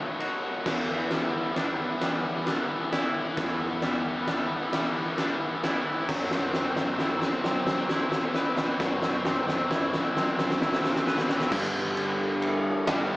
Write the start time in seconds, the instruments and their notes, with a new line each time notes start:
Already playing: clean electric guitar B2 A3 D#4
0.04 overdriven electric guitar B2 F#3
0.12 overdriven electric guitar B2 F#3
0.20 overdriven electric guitar B2 F#3, clean electric guitar F#4, ride
0.28 overdriven electric guitar B2 F#3
0.35 overdriven electric guitar B2 F#3
0.43 overdriven electric guitar B2 F#3
0.51 overdriven electric guitar B2 F#3
0.59 overdriven electric guitar B2 F#3
0.66 fingered electric bass E2, clean electric guitar E2, overdriven electric guitar E3 B3, kick, snare, crash
0.74 overdriven electric guitar E3 B3
0.82 overdriven electric guitar E3 B3
0.89 overdriven electric guitar E3 B3
0.97 overdriven electric guitar E3 B3
1.05 overdriven electric guitar E3 B3
1.11 overdriven electric guitar E3 B3, clean electric guitar G3, snare, ride
1.20 overdriven electric guitar E3 B3
1.29 overdriven electric guitar E3 B3
1.35 overdriven electric guitar E3 B3
1.43 overdriven electric guitar E3 B3
1.52 overdriven electric guitar E3 B3
1.56 overdriven electric guitar E3 B3, clean electric guitar D4, snare, ride
1.66 overdriven electric guitar E3 B3
1.75 overdriven electric guitar E3 B3
1.82 overdriven electric guitar E3 B3
1.90 overdriven electric guitar E3 B3
1.97 overdriven electric guitar E3 B3
2.01 fingered electric bass E3, overdriven electric guitar E3, clean electric guitar G3, snare, ride
2.06 overdriven electric guitar B3
2.13 overdriven electric guitar E3 B3
2.21 overdriven electric guitar E3 B3
2.29 overdriven electric guitar E3 B3
2.37 overdriven electric guitar E3 B3
2.43 overdriven electric guitar E3 B3, snare, ride
2.47 clean electric guitar D4
2.53 overdriven electric guitar E3 B3
2.59 overdriven electric guitar E3 B3
2.67 overdriven electric guitar E3 B3
2.75 overdriven electric guitar E3 B3
2.82 overdriven electric guitar E3 B3
2.91 overdriven electric guitar E3 B3, clean electric guitar E4, snare, ride
2.98 overdriven electric guitar E3 B3
3.05 overdriven electric guitar E3 B3
3.12 overdriven electric guitar E3 B3
3.21 overdriven electric guitar E3 B3
3.28 overdriven electric guitar E3 B3
3.37 clean electric guitar E2, fingered electric bass E2, overdriven electric guitar E3 B3, kick, snare, ride
3.45 overdriven electric guitar E3 B3
3.53 overdriven electric guitar E3 B3
3.61 overdriven electric guitar E3 B3
3.68 overdriven electric guitar E3 B3
3.75 overdriven electric guitar E3 B3
3.82 overdriven electric guitar E3 B3, clean electric guitar G3, snare, ride
3.91 overdriven electric guitar E3 B3
3.99 overdriven electric guitar E3 B3
4.07 overdriven electric guitar E3 B3
4.16 overdriven electric guitar E3 B3
4.23 overdriven electric guitar E3 B3
4.28 overdriven electric guitar E3 B3, clean electric guitar D4, kick, snare, ride
4.38 overdriven electric guitar E3 B3
4.46 overdriven electric guitar E3 B3
4.55 overdriven electric guitar E3 B3
4.61 overdriven electric guitar E3 B3
4.69 overdriven electric guitar E3 B3, clean electric guitar G3, snare, ride
4.73 fingered electric bass E3
4.78 overdriven electric guitar E3 B3
4.85 overdriven electric guitar E3 B3
4.92 overdriven electric guitar E3 B3
5.00 overdriven electric guitar E3 B3
5.08 overdriven electric guitar E3 B3
5.17 overdriven electric guitar E3 B3, clean electric guitar D4, snare, ride
5.23 overdriven electric guitar E3 B3
5.31 overdriven electric guitar E3 B3
5.39 overdriven electric guitar E3 B3
5.47 overdriven electric guitar E3 B3
5.54 overdriven electric guitar E3 B3
5.63 overdriven electric guitar E3 B3, clean electric guitar E4, snare, ride
5.70 overdriven electric guitar E3 B3
5.78 overdriven electric guitar E3 B3
5.85 overdriven electric guitar E3 B3
5.94 overdriven electric guitar E3 B3
6.01 overdriven electric guitar E3 B3
6.08 fingered electric bass F#2, clean electric guitar F#3, overdriven electric guitar F#3 C4, kick, snare, crash
6.17 overdriven electric guitar F#3 C4
6.24 overdriven electric guitar F#3 C4
6.31 overdriven electric guitar F#3 C4, snare
6.40 overdriven electric guitar F#3 C4
6.47 overdriven electric guitar F#3 C4
6.54 overdriven electric guitar F#3 C4, clean electric guitar C4, snare
6.62 overdriven electric guitar F#3 C4
6.70 overdriven electric guitar F#3 C4
6.76 overdriven electric guitar F#3 C4, snare
6.86 overdriven electric guitar F#3 C4
6.93 overdriven electric guitar F#3 C4
6.99 overdriven electric guitar F#3 C4, clean electric guitar E4, snare
7.09 overdriven electric guitar F#3 C4
7.17 overdriven electric guitar F#3 C4
7.22 overdriven electric guitar F#3 C4, snare
7.31 overdriven electric guitar F#3 C4
7.39 overdriven electric guitar F#3 C4
7.44 fingered electric bass F#3, overdriven electric guitar F#3, clean electric guitar C4, snare
7.49 overdriven electric guitar C4
7.55 overdriven electric guitar F#3 C4
7.62 overdriven electric guitar F#3 C4
7.67 overdriven electric guitar F#3, snare
7.71 overdriven electric guitar C4
7.78 overdriven electric guitar F#3 C4
7.85 overdriven electric guitar F#3 C4, snare
7.90 overdriven electric guitar F#3, clean electric guitar E4
7.95 overdriven electric guitar C4
8.01 overdriven electric guitar F#3 C4
8.09 overdriven electric guitar F#3 C4, snare
8.16 overdriven electric guitar F#3 C4
8.24 overdriven electric guitar F#3 C4
8.32 overdriven electric guitar F#3 C4, snare
8.36 overdriven electric guitar F#3, clean electric guitar B4
8.41 overdriven electric guitar C4
8.47 overdriven electric guitar F#3 C4
8.54 overdriven electric guitar F#3 C4, snare
8.63 overdriven electric guitar F#3 C4
8.71 overdriven electric guitar F#3 C4
8.79 fingered electric bass F#2, overdriven electric guitar F#3 C4, clean electric guitar F#3, kick, snare
8.87 overdriven electric guitar F#3 C4
8.95 overdriven electric guitar F#3 C4
9.02 overdriven electric guitar F#3 C4, snare
9.10 overdriven electric guitar F#3 C4
9.18 overdriven electric guitar F#3 C4
9.25 overdriven electric guitar F#3 C4, clean electric guitar C4, snare
9.34 overdriven electric guitar F#3 C4
9.42 overdriven electric guitar F#3 C4
9.48 overdriven electric guitar F#3 C4, snare
9.57 overdriven electric guitar F#3 C4
9.65 overdriven electric guitar F#3 C4
9.71 overdriven electric guitar F#3 C4, clean electric guitar E4, kick, snare
9.80 overdriven electric guitar F#3 C4
9.88 overdriven electric guitar F#3 C4
9.94 overdriven electric guitar F#3 C4, snare
10.03 overdriven electric guitar F#3 C4
10.12 overdriven electric guitar F#3 C4
10.16 fingered electric bass F#3, overdriven electric guitar F#3, clean electric guitar C4, snare
10.21 overdriven electric guitar C4
10.27 overdriven electric guitar F#3 C4
10.35 overdriven electric guitar F#3 C4, snare
10.42 overdriven electric guitar F#3 C4
10.50 overdriven electric guitar F#3 C4, snare
10.58 overdriven electric guitar F#3 C4, clean electric guitar E4, snare
10.66 overdriven electric guitar F#3 C4
10.73 overdriven electric guitar F#3 C4, snare
10.82 overdriven electric guitar F#3 C4, snare
10.89 overdriven electric guitar F#3 C4
10.96 overdriven electric guitar F#3 C4, snare
11.05 overdriven electric guitar F#3 C4, clean electric guitar B4, snare
11.13 overdriven electric guitar F#3 C4
11.18 overdriven electric guitar F#3 C4, snare
11.28 overdriven electric guitar F#3 C4, snare
11.36 overdriven electric guitar F#3 C4
11.40 overdriven electric guitar F#3 C4, snare
11.51 overdriven electric guitar G2 D3 G3 B3 D4, clean electric guitar G2, fingered electric bass G2, kick, crash
11.97 clean electric guitar D3, ride
12.42 clean electric guitar E3, ride
12.86 overdriven electric guitar G2 D3 G3 B3 D4, fingered electric bass G2, clean electric guitar G3, snare, ride